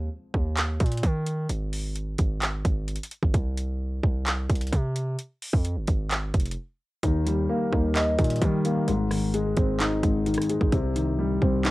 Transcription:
0.34 808-style bass D#2, kick
0.57 clap, closed hi-hat
0.80 808-style bass A#2, kick, closed hi-hat
0.86 closed hi-hat
0.92 closed hi-hat
0.97 closed hi-hat
1.03 808-style bass D#3, kick, closed hi-hat
1.26 closed hi-hat
1.49 808-style bass G#1, closed hi-hat
1.73 open hi-hat
1.95 closed hi-hat
2.18 808-style bass G#1, kick, closed hi-hat
2.42 clap, closed hi-hat
2.65 808-style bass G#1, kick, closed hi-hat
2.88 closed hi-hat
2.96 closed hi-hat
3.03 closed hi-hat
3.11 closed hi-hat
3.23 808-style bass G#1, kick
3.34 808-style bass C2, kick, closed hi-hat
3.57 closed hi-hat
4.03 808-style bass C2, kick
4.26 clap, closed hi-hat
4.49 808-style bass C2, kick, closed hi-hat
4.55 closed hi-hat
4.61 closed hi-hat
4.67 closed hi-hat
4.72 808-style bass C3, kick, closed hi-hat
4.96 closed hi-hat
5.19 closed hi-hat
5.42 open hi-hat
5.53 808-style bass F2, kick
5.65 closed hi-hat
5.76 808-style bass G1
5.87 808-style bass G#1, kick, closed hi-hat
6.11 clap, closed hi-hat
6.34 808-style bass F1, kick, closed hi-hat
6.40 closed hi-hat
6.46 closed hi-hat
6.51 closed hi-hat
7.03 808-style bass D#2, grand piano D#3, kick, closed hi-hat
7.26 grand piano G3, closed hi-hat
7.49 grand piano A#3
7.72 808-style bass D#2, grand piano D#4, kick
7.95 grand piano D#5, clap, closed hi-hat
8.18 808-style bass A#2, grand piano D#3, kick, closed hi-hat
8.24 closed hi-hat
8.30 closed hi-hat
8.36 closed hi-hat
8.42 808-style bass D#3, grand piano G3, kick, closed hi-hat
8.65 grand piano A#3, closed hi-hat
8.88 808-style bass G#1, grand piano G#2, closed hi-hat
9.11 grand piano D#3, cross-stick, open hi-hat
9.34 grand piano G#3, closed hi-hat
9.57 808-style bass G#1, grand piano C4, kick, closed hi-hat
9.80 grand piano D#4, clap, closed hi-hat
10.03 808-style bass G#1, grand piano G#2, kick, closed hi-hat
10.26 grand piano D#3, closed hi-hat
10.34 cross-stick, closed hi-hat
10.42 closed hi-hat
10.50 grand piano G#3, closed hi-hat
10.61 808-style bass G#1, kick
10.72 808-style bass C2, grand piano C3, kick, closed hi-hat
10.96 grand piano D#3, closed hi-hat
11.19 grand piano G3
11.42 808-style bass C2, grand piano C4, kick
11.65 grand piano D#4, clap, closed hi-hat

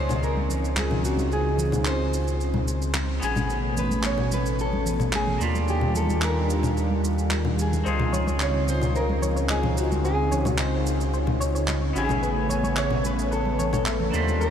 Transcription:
Already playing: sub bass C#2, analog synth pad C#3 C4 D#4 F4, clean electric guitar C4 D#4 F4 G#4, nylon-string guitar C5
0.09 low conga, shaker
0.23 nylon-string guitar A#4, shaker
0.37 high conga
0.50 low conga, shaker
0.65 shaker
0.77 nylon-string guitar G#4, clap, high conga, shaker
0.91 low conga
1.05 nylon-string guitar F#4, shaker
1.17 high conga, shaker
1.32 nylon-string guitar G#4, shaker
1.58 low conga, shaker
1.72 high conga, low conga, shaker
1.85 nylon-string guitar C5, clap, shaker
2.13 shaker
2.28 shaker
2.41 shaker
2.54 high conga, low conga
2.68 shaker
2.82 shaker
2.94 clap, high conga, shaker
3.20 sub bass A1, analog synth pad B2 A3 C#4 G#5, clean electric guitar B3 C#4, shaker
3.24 nylon-string guitar G#4, clean electric guitar G#5
3.36 high conga, low conga, shaker
3.50 shaker
3.77 nylon-string guitar B4, low conga, shaker
3.91 high conga, shaker
4.03 nylon-string guitar C#5, clap, shaker
4.18 low conga
4.32 nylon-string guitar B4, high conga, shaker
4.46 shaker
4.59 nylon-string guitar A4, shaker
4.73 high conga
4.85 low conga, shaker
5.00 low conga, shaker
5.13 nylon-string guitar G#4, clap, high conga, shaker
5.27 low conga
5.38 sub bass D#2, analog synth pad D#3 G3 D4 F4, clean electric guitar A#3 D4 F4, shaker
5.42 nylon-string guitar F4, clean electric guitar G4
5.55 high conga, shaker
5.68 nylon-string guitar G4, shaker
5.81 low conga
5.94 nylon-string guitar A4, low conga, shaker
6.09 high conga, shaker
6.22 nylon-string guitar A#4, clap, shaker
6.50 shaker
6.63 low conga, shaker
6.77 shaker
6.90 high conga
7.04 shaker
7.18 shaker
7.31 clap, high conga, shaker
7.45 low conga
7.59 nylon-string guitar G#4, shaker
7.73 high conga, shaker
7.84 sub bass C#2, analog synth pad C#3 C4 D#4 F4, clean electric guitar C4 D#4 F4, synth arpeggio sound C5, shaker
7.88 clean electric guitar G#4
7.99 low conga
8.12 synth arpeggio sound C#5, low conga, shaker
8.27 synth arpeggio sound C#5, high conga, shaker
8.40 nylon-string guitar C#5, synth arpeggio sound D#5, clap, shaker
8.66 nylon-string guitar C5, high conga, shaker
8.82 low conga, shaker
8.89 nylon-string guitar C5
8.95 nylon-string guitar A#4, synth arpeggio sound C5, shaker
9.09 high conga
9.21 synth arpeggio sound C#5, low conga, shaker
9.36 synth arpeggio sound C#5, shaker
9.49 nylon-string guitar G#4, synth arpeggio sound D#5, clap, high conga, shaker
9.63 low conga
9.77 nylon-string guitar F#4, shaker
9.92 high conga, shaker
10.04 nylon-string guitar G#4, synth arpeggio sound C5, shaker
10.31 synth arpeggio sound C#5, low conga, shaker
10.45 synth arpeggio sound C#5, high conga, low conga, shaker
10.58 nylon-string guitar C5, synth arpeggio sound D#5, clap, shaker
10.86 shaker
11.01 shaker
11.13 synth arpeggio sound C5, shaker
11.27 high conga, low conga
11.40 synth arpeggio sound C#5, shaker
11.55 synth arpeggio sound C#5, shaker
11.68 synth arpeggio sound D#5, clap, high conga, shaker
11.93 sub bass A1, analog synth pad C#3 A3 B3 G#5, clean electric guitar B3 C#4 E4, nylon-string guitar G#4, shaker
11.98 clean electric guitar G#5
12.09 high conga, low conga, shaker
12.22 synth arpeggio sound B4, shaker
12.49 synth arpeggio sound C#5, low conga, shaker
12.63 synth arpeggio sound C#5, high conga, shaker
12.77 nylon-string guitar C#5, synth arpeggio sound E5, clap, shaker
12.90 low conga
13.04 nylon-string guitar B4, high conga, shaker
13.19 shaker
13.31 nylon-string guitar A4, synth arpeggio sound B4, shaker
13.45 high conga
13.59 synth arpeggio sound C#5, low conga, shaker
13.73 nylon-string guitar A4, synth arpeggio sound C#5, low conga, shaker
13.86 synth arpeggio sound E5, clap, high conga, shaker
14.00 low conga
14.11 sub bass D#2, analog synth pad D#3 G3 D4 F4, clean electric guitar A#3 D4 F4, nylon-string guitar C5, shaker
14.15 clean electric guitar G4
14.27 high conga, shaker
14.40 synth arpeggio sound A#4, nylon-string guitar A#4, shaker

